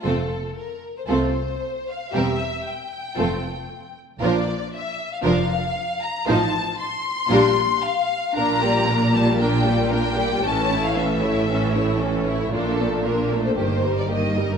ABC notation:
X:1
M:4/4
L:1/16
Q:1/4=115
K:F
V:1 name="Violin section"
A4 B3 c c6 f2 | e4 g8- g2 z2 | d4 e3 f f6 b2 | a4 c'8 f4 |
[K:Aphr] b6 a2 g4 g4 | a3 f e8 z4 | A4 B3 c c3 d _e3 B |]
V:2 name="Violin section"
[FA]2 z6 [FA]2 z6 | [GB]2 z6 [FA]2 z6 | [FB]2 z6 [FB]2 z6 | [Fc]2 z6 [FB]2 z6 |
[K:Aphr] B2 [Gd]2 B2 [Gd]2 B2 [Gd]2 B2 [Gd]2 | [^CA]2 [E^c]2 [CA]2 [Ec]2 [CA]2 [Ec]2 [CA]2 [Ec]2 | [B,F]2 [DA]2 [B,F]2 [DA]2 G2 [_EB]2 G2 [EB]2 |]
V:3 name="Viola section"
[A,C]2 z6 [A,C]2 z6 | [G,C]2 z6 [A,C]2 z6 | [F,D]2 z6 [F,D]2 z6 | [F,_E]2 z6 [G,D]2 z6 |
[K:Aphr] [B,D]2 [G,B,]2 [B,D]2 [G,B,]2 [B,D]2 [G,B,]2 [B,D]2 [G,B,]2 | [E,^C]2 [A,E]2 [E,C]2 [A,E]2 [E,C]2 [A,E]2 [E,C]2 [A,E]2 | [B,D]2 [A,B,]2 [B,D]2 [A,B,]2 [_E,B,]2 G,2 [E,B,]2 G,2 |]
V:4 name="Cello section" clef=bass
F,,4 z4 C,,4 z4 | E,,4 z4 F,,4 z4 | B,,4 z4 F,,4 z4 | A,,4 z4 B,,4 z4 |
[K:Aphr] B,,16 | A,,16 | B,,8 G,,8 |]
V:5 name="Double bass section" clef=bass
F,,,4 z4 C,,4 z4 | E,,,4 z4 F,,,4 z4 | B,,,4 z4 F,,,4 z4 | A,,,4 z4 B,,,4 z4 |
[K:Aphr] B,,,16 | A,,,16 | B,,,8 G,,,8 |]